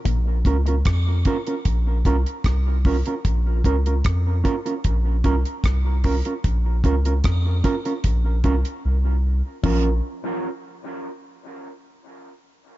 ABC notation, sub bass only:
X:1
M:4/4
L:1/16
Q:1/4=75
K:Bbm
V:1 name="Sub bass" clef=bass
B,,,2 D,,2 F,,2 z2 B,,,2 C,, z C,,3 z | B,,,2 D,,2 F,,2 z2 B,,,2 C,, z C,,3 z | B,,,2 D,,2 F,,2 z2 B,,,2 C,, z C,,3 z | B,,,2 z12 z2 |]